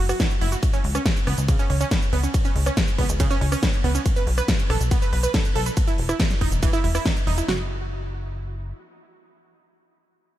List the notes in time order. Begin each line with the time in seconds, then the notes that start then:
0.00 F#1
0.09 F#4, cross-stick, open hi-hat, shaker
0.20 E4, kick, snare, closed hi-hat, ride, shaker
0.31 closed hi-hat, shaker
0.41 F#1 E4, open hi-hat
0.52 F#4, closed hi-hat, shaker
0.63 kick, closed hi-hat, ride, shaker
0.74 C#4, closed hi-hat, shaker
0.84 C#2, open hi-hat
0.95 C#4, cross-stick, closed hi-hat, shaker
1.06 kick, snare, closed hi-hat, ride, shaker
1.16 closed hi-hat, shaker
1.27 C#2 B3, cross-stick, open hi-hat
1.38 C#2, closed hi-hat, shaker
1.48 C#3, kick, closed hi-hat, ride, shaker
1.59 C#4, closed hi-hat, shaker
1.70 C#2 C#4, open hi-hat
1.81 C#4, closed hi-hat, shaker
1.91 B3, kick, snare, closed hi-hat, ride, shaker
2.02 closed hi-hat, shaker
2.13 C#2 B3, open hi-hat
2.23 C#4, shaker
2.34 kick, closed hi-hat, ride, shaker
2.45 C#4, closed hi-hat, shaker
2.56 C#2, open hi-hat
2.66 C#4, cross-stick, closed hi-hat, shaker
2.77 kick, snare, closed hi-hat, ride, shaker
2.88 closed hi-hat, shaker
2.98 C#2 B3, kick, open hi-hat
3.09 C#2, shaker
3.20 C#3, kick, closed hi-hat, ride, shaker
3.31 C#4, closed hi-hat, shaker
3.41 C#2 C#4, open hi-hat
3.52 C#4, cross-stick, open hi-hat, shaker
3.63 B3, kick, snare, closed hi-hat, ride, shaker
3.74 closed hi-hat, shaker
3.84 C#2 B3, open hi-hat
3.95 C#4, closed hi-hat, shaker
4.06 kick, closed hi-hat, ride, shaker
4.16 B4, closed hi-hat, shaker
4.27 B1, open hi-hat
4.38 B4, cross-stick, closed hi-hat, shaker
4.48 kick, snare, closed hi-hat, ride, shaker
4.59 closed hi-hat, shaker
4.70 B1 A4, cross-stick, open hi-hat
4.80 B1, closed hi-hat, shaker
4.91 B3, kick, closed hi-hat, ride, shaker
5.02 B4, closed hi-hat, shaker
5.13 B1 B4, open hi-hat
5.23 B4, closed hi-hat, shaker
5.34 A4, kick, snare, closed hi-hat, ride, shaker
5.45 closed hi-hat, shaker
5.55 B1 A4, open hi-hat
5.66 B4, closed hi-hat, shaker
5.77 kick, closed hi-hat, ride, shaker
5.88 E4, closed hi-hat, shaker
5.98 E1, open hi-hat
6.09 E4, cross-stick, shaker
6.20 kick, snare, closed hi-hat, ride, shaker
6.30 snare, closed hi-hat, shaker
6.41 E1 D#4, kick, open hi-hat
6.52 E1, closed hi-hat, shaker
6.63 E3, kick, closed hi-hat, ride, shaker
6.73 E4, closed hi-hat, shaker
6.84 E1 E4, open hi-hat
6.95 E4, cross-stick, open hi-hat, shaker
7.06 D#4, kick, snare, ride, shaker
7.16 closed hi-hat, shaker
7.27 E1 D#4, open hi-hat
7.38 E4, closed hi-hat, shaker
7.48 F#1 F#4, snare